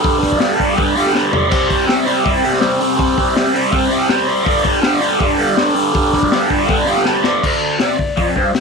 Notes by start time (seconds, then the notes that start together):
0.00 G2 D3 G3, open hi-hat
0.04 kick
0.18 G2 D3 G3
0.23 kick, snare, open hi-hat
0.32 kick
0.39 G2 D3 G3, snare, open hi-hat
0.57 G2 D3 G3, kick, open hi-hat
0.75 G2 D3 G3, kick, open hi-hat
0.95 G2 D3 G3, open hi-hat
1.06 snare
1.12 G2 D3 G3, snare
1.31 G2 D3 G3, floor tom
1.48 C3 G3 C4, kick, splash, crash
1.68 C3 G3 C4, kick, open hi-hat
1.86 C3 G3 C4, snare, open hi-hat
2.07 C3 G3 C4, open hi-hat
2.25 C3 G3 C4, kick, open hi-hat
2.43 C3 G3 C4, open hi-hat
2.53 snare
2.61 C3 G3 C4, snare, open hi-hat
2.80 C3 G3 C4, open hi-hat
2.97 C3 G3 C4, kick, open hi-hat
3.17 C3 G3 C4, kick, open hi-hat
3.34 C3 G3 C4, snare, open hi-hat
3.54 C3 G3 C4, open hi-hat
3.71 C3 G3 C4, kick, open hi-hat
3.90 C3 G3 C4, open hi-hat
4.09 C3 G3 C4, snare, open hi-hat
4.27 C3 G3 C4, open hi-hat
4.43 G2 D3 G3, kick, open hi-hat
4.63 G2 D3 G3, kick, open hi-hat
4.81 G2 D3 G3, snare, open hi-hat
5.01 G2 D3 G3, open hi-hat
5.19 G2 D3 G3, kick, open hi-hat
5.38 G2 D3 G3, open hi-hat
5.56 G2 D3 G3, snare, open hi-hat
5.75 G2 D3 G3, open hi-hat
5.93 G2 D3 G3, kick, open hi-hat
6.12 G2 D3 G3, kick, snare, open hi-hat
6.23 kick
6.32 G2 D3 G3, snare, open hi-hat
6.48 G2 D3 G3, kick, open hi-hat
6.67 G2 D3 G3, kick, open hi-hat
6.86 G2 D3 G3, open hi-hat
6.97 snare
7.05 G2 D3 G3, snare
7.23 G2 D3 G3, snare
7.43 D2, kick, crash
7.80 C3 D5, snare, open hi-hat
7.90 snare
7.99 D2, kick
8.17 F2, kick, open hi-hat
8.36 G2 C5, kick
8.54 D2, snare, open hi-hat